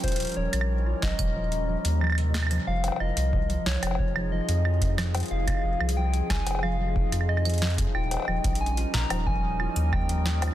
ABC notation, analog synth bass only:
X:1
M:4/4
L:1/16
Q:1/4=91
K:Fm
V:1 name="Analog synth bass" clef=bass
E,,, z E,,, B,,,2 z B,,, E,,,3 z E,,4 z | F,,, z F,,, C,,2 z C,, F,,,3 z F,,4 z | F,,, z F,,, C,,2 z C,, F,,,3 z F,,4 z | E,,, z E,,, B,,,2 z B,,, E,,,3 z E,,4 z |]